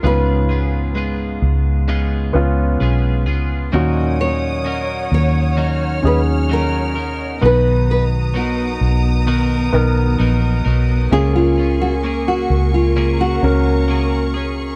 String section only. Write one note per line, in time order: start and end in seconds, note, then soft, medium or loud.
3.73 7.39 C#5 medium
3.73 7.39 F#5 medium
3.73 5.56 D#6 medium
5.58 7.41 F6 medium
7.42 11.08 B3 medium
7.42 11.08 A#5 medium
7.42 11.08 D#6 medium
11.12 14.76 A#4 medium
11.12 12.95 G#5 medium
11.12 14.76 C#6 medium
12.97 14.76 A#5 medium